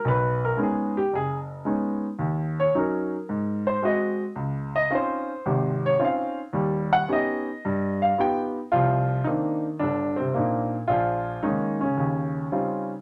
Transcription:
0.05 0.51 B1 medium
0.05 0.42 B4 medium
0.45 0.59 A#4 medium
0.57 0.96 G#3 medium
0.57 0.97 B3 medium
0.57 0.97 C#4 medium
0.57 0.97 D#4 medium
0.63 0.97 G#4 medium
0.97 1.12 G4 medium
1.13 1.60 F#1 medium
1.13 1.37 G#4 medium
1.65 2.05 G#3 medium
1.65 2.05 B3 soft
1.65 2.05 C#4 soft
1.65 2.05 D#4 medium
2.19 2.67 D#2 medium
2.60 2.75 C#5 medium
2.75 3.14 F#3 medium
2.75 3.14 C#4 medium
2.75 3.14 D#4 medium
2.75 3.64 A#4 medium
3.29 3.76 G#2 medium
3.67 3.83 C5 medium
3.82 4.22 G#3 medium
3.82 4.22 C4 medium
3.82 4.22 F#4 medium
3.82 4.20 D#5 medium
4.35 4.83 C#2 medium
4.76 4.91 D#5 medium
4.90 5.30 C4 medium
4.90 5.30 C#4 medium
4.90 5.30 D#4 medium
4.90 5.30 F4 medium
4.95 5.81 C5 medium
5.46 5.93 G#1 medium
5.46 5.93 C3 medium
5.86 6.01 C#5 medium
5.99 6.38 C4 medium
5.99 6.39 C#4 medium
5.99 6.39 D#4 soft
5.99 6.39 F4 medium
6.05 6.38 F5 medium
6.53 7.01 D#2 medium
6.53 7.01 G3 medium
6.93 7.08 F#5 loud
7.08 7.47 B3 medium
7.08 7.47 C#4 medium
7.08 7.48 D#4 medium
7.08 7.48 G4 medium
7.13 7.98 D#5 medium
7.65 8.11 G2 medium
8.02 8.17 F5 medium
8.18 8.56 B3 medium
8.18 8.57 D#4 medium
8.18 8.57 F4 medium
8.18 8.57 G4 medium
8.18 8.42 G5 medium
8.72 9.19 C2 medium
8.72 9.19 C3 medium
8.72 9.22 F3 medium
8.72 9.27 F4 loud
9.24 9.77 D#3 medium
9.24 9.65 A#3 medium
9.24 9.65 C4 soft
9.24 9.65 D4 soft
9.24 9.26 D#4 medium
9.24 9.66 D#4 medium
9.79 10.27 G1 medium
9.79 10.14 D4 medium
9.84 10.16 D3 medium
10.16 10.34 C3 medium
10.16 10.34 C4 medium
10.34 10.78 A#2 medium
10.34 10.76 A#3 medium
10.34 10.74 C4 soft
10.34 10.74 D4 soft
10.34 10.74 D#4 medium
10.88 11.36 A#1 medium
10.88 11.40 F3 medium
10.88 11.44 F4 medium
11.43 11.80 D#3 medium
11.43 11.82 G#3 medium
11.43 11.82 A#3 soft
11.43 11.79 C#4 medium
11.43 11.77 D#4 medium
11.81 12.87 C#3 medium
11.81 12.50 C#4 medium
11.97 12.44 D#2 medium
12.52 12.91 G3 medium
12.52 12.91 C4 soft
12.52 12.91 C#4 soft
12.52 12.91 D#4 soft
12.52 12.91 F4 medium

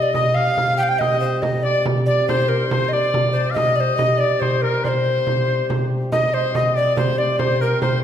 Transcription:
0.00 0.99 C3 medium
0.00 0.99 G3 medium
0.00 0.13 D5 medium
0.00 0.11 D#5 medium
0.13 0.36 D#5 medium
0.13 0.38 D#5 medium
0.13 frame drum medium
0.34 0.77 F5 medium
0.34 0.57 F5 medium
0.57 0.77 F5 medium
0.57 frame drum medium
0.77 0.85 G5 medium
0.77 0.89 G5 medium
0.83 0.90 F5 medium
0.89 1.00 G5 medium
0.89 1.03 G5 medium
0.99 6.10 C3 medium
0.99 6.10 G3 medium
0.99 1.20 D#5 medium
0.99 1.39 D#5 medium
0.99 frame drum medium
1.20 1.44 C5 medium
1.42 1.64 D#5 medium
1.42 frame drum medium
1.63 1.85 D5 medium
1.63 1.84 D5 medium
1.86 frame drum medium
2.06 2.26 D5 medium
2.06 2.27 D5 medium
2.28 2.50 C5 medium
2.28 2.68 C5 medium
2.28 frame drum medium
2.48 2.68 A#4 medium
2.69 2.90 C5 medium
2.69 2.91 C5 medium
2.69 frame drum medium
2.89 2.94 D#5 medium
2.93 3.52 D5 medium
2.93 3.31 D5 loud
3.14 frame drum medium
3.32 3.53 C5 medium
3.51 3.77 D#5 loud
3.51 3.59 F5 medium
3.56 4.22 D#5 medium
3.56 frame drum medium
3.76 3.81 D5 medium
3.80 3.96 C5 medium
3.97 4.19 D#5 medium
3.97 frame drum medium
4.18 4.41 D5 medium
4.18 4.44 D5 medium
4.40 4.63 C5 medium
4.40 frame drum medium
4.62 4.83 A#4 medium
4.62 4.86 A#4 medium
4.84 5.91 C5 medium
4.84 4.89 D5 medium
4.84 frame drum medium
4.88 5.87 C5 medium
5.27 frame drum medium
5.48 frame drum soft
5.70 frame drum medium
6.11 8.04 C3 medium
6.11 8.04 G3 medium
6.11 6.35 D#5 medium
6.11 6.36 D#5 medium
6.11 frame drum medium
6.34 6.54 C5 medium
6.34 6.58 C5 medium
6.55 6.75 D#5 medium
6.55 6.78 D#5 medium
6.55 frame drum medium
6.76 6.96 D5 medium
6.76 6.97 D5 medium
6.97 7.20 C5 medium
6.97 7.17 C5 medium
6.97 frame drum medium
7.18 7.41 D5 medium
7.18 7.38 D5 medium
7.39 7.62 C5 medium
7.39 7.60 C5 medium
7.39 frame drum medium
7.61 7.81 A#4 medium
7.82 8.02 C5 medium
7.82 frame drum medium

